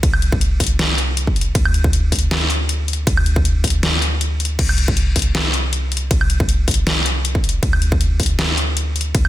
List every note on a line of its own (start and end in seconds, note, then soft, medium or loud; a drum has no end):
0.03 1.53 C2 medium
0.03 kick loud
0.03 closed hi-hat medium
0.03 ride medium
0.14 high woodblock medium
0.22 closed hi-hat medium
0.32 kick loud
0.41 closed hi-hat medium
0.60 kick medium
0.60 closed hi-hat medium
0.60 open hi-hat loud
0.67 closed hi-hat medium
0.79 snare loud
0.79 closed hi-hat medium
0.79 ride soft
0.98 closed hi-hat medium
1.17 closed hi-hat medium
1.27 kick medium
1.36 closed hi-hat soft
1.41 closed hi-hat medium
1.55 3.05 D2 medium
1.55 kick loud
1.55 closed hi-hat medium
1.55 ride soft
1.65 high woodblock medium
1.74 closed hi-hat medium
1.84 kick loud
1.93 closed hi-hat medium
2.12 kick medium
2.12 closed hi-hat medium
2.12 open hi-hat loud
2.19 closed hi-hat medium
2.31 snare loud
2.31 closed hi-hat medium
2.31 ride soft
2.50 closed hi-hat medium
2.69 closed hi-hat medium
2.88 closed hi-hat medium
2.93 closed hi-hat medium
3.07 4.57 D2 medium
3.07 kick loud
3.07 closed hi-hat medium
3.07 ride soft
3.17 high woodblock medium
3.26 closed hi-hat medium
3.36 kick loud
3.45 closed hi-hat medium
3.64 kick medium
3.64 closed hi-hat medium
3.64 open hi-hat loud
3.70 closed hi-hat medium
3.83 snare loud
3.83 closed hi-hat medium
3.83 ride soft
4.02 closed hi-hat medium
4.21 closed hi-hat medium
4.40 closed hi-hat medium
4.45 closed hi-hat medium
4.59 6.09 C2 medium
4.59 kick loud
4.59 closed hi-hat medium
4.59 crash medium
4.59 ride soft
4.69 high woodblock medium
4.78 closed hi-hat medium
4.88 kick loud
4.97 closed hi-hat medium
5.16 kick medium
5.16 closed hi-hat medium
5.16 open hi-hat loud
5.22 closed hi-hat medium
5.35 snare loud
5.35 closed hi-hat medium
5.35 ride soft
5.54 closed hi-hat medium
5.73 closed hi-hat medium
5.92 closed hi-hat medium
5.97 closed hi-hat medium
6.11 7.61 C2 medium
6.11 kick loud
6.11 closed hi-hat medium
6.11 ride soft
6.21 high woodblock medium
6.30 closed hi-hat medium
6.40 kick loud
6.49 closed hi-hat medium
6.68 kick medium
6.68 closed hi-hat medium
6.68 open hi-hat medium
6.74 closed hi-hat medium
6.87 snare loud
6.87 closed hi-hat medium
6.87 ride soft
7.06 closed hi-hat medium
7.25 closed hi-hat medium
7.35 kick medium
7.44 closed hi-hat medium
7.49 closed hi-hat medium
7.63 9.13 D2 medium
7.63 kick loud
7.63 closed hi-hat medium
7.63 ride soft
7.73 high woodblock medium
7.82 closed hi-hat medium
7.92 kick loud
8.01 closed hi-hat medium
8.20 kick medium
8.20 closed hi-hat medium
8.20 open hi-hat medium
8.26 closed hi-hat medium
8.39 snare loud
8.39 closed hi-hat medium
8.39 ride soft
8.58 closed hi-hat medium
8.77 closed hi-hat medium
8.96 closed hi-hat medium
9.01 closed hi-hat medium
9.15 9.28 D2 medium
9.15 kick loud
9.15 closed hi-hat medium
9.15 ride soft
9.25 high woodblock medium